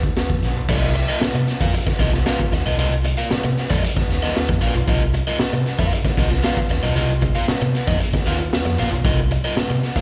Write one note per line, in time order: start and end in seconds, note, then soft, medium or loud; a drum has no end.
0.00 0.12 D#2 medium
0.00 kick medium
0.16 snare loud
0.16 closed hi-hat medium
0.30 0.41 F2 medium
0.30 kick medium
0.42 0.56 A#1 medium
0.42 snare soft
0.42 closed hi-hat medium
0.56 0.67 B1 medium
0.69 1.01 C2 medium
0.69 0.89 F4 medium
0.69 0.89 A#4 loud
0.69 0.89 D#5 loud
0.69 kick loud
0.69 crash loud
0.95 muted overdriven electric guitar stroke soft
0.95 closed hi-hat medium
1.08 1.19 F4 soft
1.08 1.19 A#4 medium
1.08 1.18 D#5 medium
1.08 closed hi-hat medium
1.21 muted fingered electric bass stroke medium
1.21 muted overdriven electric guitar stroke soft
1.21 snare loud
1.34 1.45 C3 medium
1.34 muted overdriven electric guitar stroke soft
1.34 closed hi-hat soft
1.48 snare soft
1.48 closed hi-hat medium
1.61 1.72 F2 medium
1.61 1.73 F4 medium
1.61 1.73 A#4 medium
1.61 1.74 F5 medium
1.61 kick medium
1.61 closed hi-hat soft
1.74 muted overdriven electric guitar stroke medium
1.74 closed hi-hat loud
1.87 muted overdriven electric guitar stroke medium
1.87 kick medium
1.87 snare soft
1.87 closed hi-hat soft
1.99 2.21 C2 medium
1.99 2.12 F4 medium
1.99 2.13 A#4 medium
1.99 2.12 D#5 medium
1.99 kick medium
1.99 snare soft
1.99 closed hi-hat medium
2.13 muted overdriven electric guitar stroke medium
2.13 snare soft
2.13 closed hi-hat medium
2.26 2.39 F4 loud
2.26 2.39 A#4 loud
2.26 2.39 F5 loud
2.26 snare loud
2.39 kick medium
2.52 2.63 D#2 medium
2.52 muted overdriven electric guitar stroke soft
2.52 snare soft
2.52 closed hi-hat medium
2.66 2.79 B1 medium
2.66 2.76 F4 medium
2.66 2.76 A#4 medium
2.66 2.76 D#5 medium
2.66 closed hi-hat medium
2.78 3.11 C2 loud
2.78 2.91 F4 loud
2.78 2.92 A#4 medium
2.78 2.92 D#5 loud
2.78 closed hi-hat medium
2.91 closed hi-hat soft
3.04 muted overdriven electric guitar stroke soft
3.04 closed hi-hat medium
3.17 3.28 F4 soft
3.17 3.28 A#4 medium
3.17 3.28 F5 medium
3.17 closed hi-hat medium
3.31 muted overdriven electric guitar stroke soft
3.31 muted fingered electric bass stroke soft
3.31 snare loud
3.44 3.55 C3 loud
3.44 muted overdriven electric guitar stroke medium
3.44 closed hi-hat soft
3.57 snare soft
3.57 closed hi-hat medium
3.70 3.81 F2 medium
3.70 3.82 F4 medium
3.70 3.82 A#4 medium
3.70 3.83 D#5 medium
3.70 kick loud
3.70 closed hi-hat soft
3.83 muted overdriven electric guitar stroke medium
3.83 closed hi-hat loud
3.97 muted overdriven electric guitar stroke soft
3.97 kick medium
3.97 snare soft
4.09 4.31 D#2 medium
4.09 snare soft
4.09 closed hi-hat medium
4.23 4.36 F4 medium
4.23 4.36 A#4 medium
4.23 4.35 D#5 loud
4.23 snare soft
4.23 closed hi-hat medium
4.36 snare loud
4.49 4.60 F2 medium
4.49 muted overdriven electric guitar stroke medium
4.49 kick loud
4.61 4.72 A#1 medium
4.61 4.74 F4 loud
4.61 4.74 A#4 loud
4.61 4.75 F5 medium
4.61 snare soft
4.61 closed hi-hat medium
4.75 4.86 B1 medium
4.75 muted overdriven electric guitar stroke soft
4.75 closed hi-hat medium
4.88 5.20 C2 loud
4.88 5.00 F4 medium
4.88 5.01 A#4 loud
4.88 5.01 D#5 loud
4.88 kick loud
4.88 closed hi-hat medium
5.00 closed hi-hat soft
5.14 muted overdriven electric guitar stroke soft
5.14 closed hi-hat medium
5.27 5.37 F4 medium
5.27 5.37 A#4 medium
5.27 5.37 D#5 medium
5.27 closed hi-hat medium
5.39 muted fingered electric bass stroke medium
5.39 muted overdriven electric guitar stroke soft
5.39 snare loud
5.52 5.64 C3 loud
5.52 muted overdriven electric guitar stroke soft
5.52 closed hi-hat soft
5.66 snare soft
5.66 closed hi-hat medium
5.79 5.90 F2 medium
5.79 5.92 F4 medium
5.79 5.92 A#4 medium
5.79 5.93 F5 medium
5.79 kick loud
5.79 closed hi-hat soft
5.92 muted overdriven electric guitar stroke medium
5.92 closed hi-hat loud
6.05 muted overdriven electric guitar stroke soft
6.05 kick medium
6.05 snare soft
6.05 closed hi-hat soft
6.17 6.39 C2 medium
6.17 6.31 F4 medium
6.17 6.31 A#4 medium
6.17 6.30 D#5 medium
6.17 kick loud
6.17 snare soft
6.17 closed hi-hat medium
6.30 muted overdriven electric guitar stroke soft
6.30 snare soft
6.30 closed hi-hat medium
6.43 6.56 F4 loud
6.43 6.57 A#4 loud
6.43 6.57 F5 loud
6.43 snare loud
6.57 kick loud
6.57 closed hi-hat soft
6.69 6.81 D#2 medium
6.69 muted overdriven electric guitar stroke soft
6.69 snare soft
6.69 closed hi-hat medium
6.83 6.96 B1 loud
6.83 6.94 F4 medium
6.83 6.93 A#4 medium
6.83 6.93 D#5 medium
6.83 closed hi-hat medium
6.96 7.28 C2 loud
6.96 7.09 F4 medium
6.96 7.09 A#4 loud
6.96 7.09 D#5 loud
6.96 closed hi-hat medium
7.09 closed hi-hat soft
7.22 muted overdriven electric guitar stroke medium
7.22 kick medium
7.22 closed hi-hat medium
7.35 7.46 F4 medium
7.35 7.45 A#4 medium
7.35 7.45 F5 medium
7.35 closed hi-hat medium
7.48 muted overdriven electric guitar stroke soft
7.48 muted fingered electric bass stroke soft
7.48 snare loud
7.61 7.72 C3 loud
7.61 muted overdriven electric guitar stroke soft
7.75 snare soft
7.75 closed hi-hat medium
7.87 7.98 F2 loud
7.87 7.98 F4 medium
7.87 7.99 A#4 medium
7.87 7.99 D#5 medium
7.87 kick loud
7.87 closed hi-hat medium
8.00 muted overdriven electric guitar stroke medium
8.00 closed hi-hat loud
8.13 muted overdriven electric guitar stroke medium
8.13 kick medium
8.13 snare soft
8.13 closed hi-hat soft
8.26 8.48 D#2 loud
8.26 8.39 F4 medium
8.26 8.39 A#4 medium
8.26 8.39 F5 medium
8.26 snare soft
8.26 closed hi-hat medium
8.40 muted overdriven electric guitar stroke medium
8.40 closed hi-hat soft
8.53 snare loud
8.65 8.76 F2 medium
8.65 muted overdriven electric guitar stroke soft
8.65 snare soft
8.65 closed hi-hat soft
8.78 8.90 A#1 medium
8.78 8.91 F4 medium
8.78 8.92 A#4 medium
8.78 8.92 F5 medium
8.78 snare soft
8.78 closed hi-hat medium
8.92 9.02 B1 loud
8.92 muted overdriven electric guitar stroke soft
8.92 closed hi-hat medium
9.05 9.37 C2 loud
9.05 9.18 F4 loud
9.05 9.18 A#4 loud
9.05 9.18 D#5 loud
9.05 kick loud
9.05 closed hi-hat medium
9.18 closed hi-hat soft
9.31 muted overdriven electric guitar stroke medium
9.31 closed hi-hat medium
9.44 9.55 F4 medium
9.44 9.54 A#4 medium
9.44 9.54 D#5 medium
9.44 closed hi-hat medium
9.57 muted fingered electric bass stroke soft
9.57 muted overdriven electric guitar stroke soft
9.57 snare loud
9.70 9.81 C3 loud
9.70 muted overdriven electric guitar stroke soft
9.70 closed hi-hat soft
9.83 snare soft
9.83 closed hi-hat medium
9.96 10.01 F2 medium
9.96 10.01 F4 medium
9.96 10.01 A#4 medium
9.96 10.01 F5 medium
9.96 kick loud
9.96 closed hi-hat medium